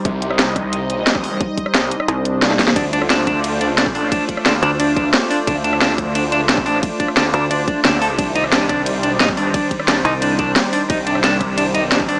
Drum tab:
RD |----------------|----------------|x---x---x---x---|x---x---x---x---|
HH |x-x-x-x-x-x-x-o-|x-x-x-x-x-x-x-o-|x-x-x-x-x-x-x-o-|x-x-x-x-x-x-x-o-|
SD |---ro-r-----or--|---ro--r----oooo|---ro-r-----or--|---ro-------o---|
BD |o-----o------o--|o-o-------------|o-----o------o--|o-o-------o-----|

RD |x---x---x---x---|x---x---x---x---|x---x---x---x---|x---x---x---x---|
HH |x-x-x-x-x-x-x-o-|x-x-x-x-x-x-x-o-|x-x-x-x-x-x-x-o-|x-x-x-x-x-x-x-o-|
SD |---ro-r-----or--|---ro-------o---|---ro-r-----or--|---ro-------o---|
BD |o-----o------o--|o-o-------o-----|o-----o------o--|o-o-------o-----|

RD |x---x---x---x---|
HH |x-x-x-x-x-x-x-o-|
SD |---ro-r-----or--|
BD |o-----o------o--|